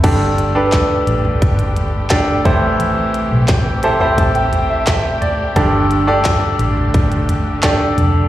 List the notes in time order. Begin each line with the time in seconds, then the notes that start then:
0.03 G1 G2 D3 A3 D4 G4 A4 D5, kick, closed hi-hat, crash
0.38 closed hi-hat
0.55 D4 G4 A4 B4
0.72 kick, snare, clap, closed hi-hat
1.07 A1, closed hi-hat
1.25 floor tom
1.42 G1, kick, closed hi-hat
1.59 closed hi-hat
1.76 closed hi-hat, floor tom
2.10 D4 G4 A4 D5, kick, snare, clap, closed hi-hat
2.45 A1 A2 C3 E3 E4 G4 A4 C5, kick, closed hi-hat, floor tom
2.79 A1, closed hi-hat
3.14 closed hi-hat
3.31 B1
3.48 A1, kick, snare, clap, closed hi-hat
3.83 E4 G4 A4 C5 A5, closed hi-hat
4.00 E4 G4 A4 C5 B5, floor tom
4.18 A1 A5, kick, closed hi-hat
4.35 G5, closed hi-hat
4.53 closed hi-hat, floor tom
4.70 E5
4.87 E5, kick, snare, clap, closed hi-hat
5.21 D5, closed hi-hat, floor tom
5.55 G1 G2 D3 A3 D4 G4 A4 D5, kick, closed hi-hat
5.91 closed hi-hat
6.07 D4 G4 A4 D5
6.25 kick, snare, clap, closed hi-hat
6.59 A1, closed hi-hat
6.77 floor tom
6.94 G1, kick, closed hi-hat
7.12 closed hi-hat
7.29 closed hi-hat, floor tom
7.63 D4 G4 A4 D5, kick, snare, clap, closed hi-hat
7.98 F1, closed hi-hat, floor tom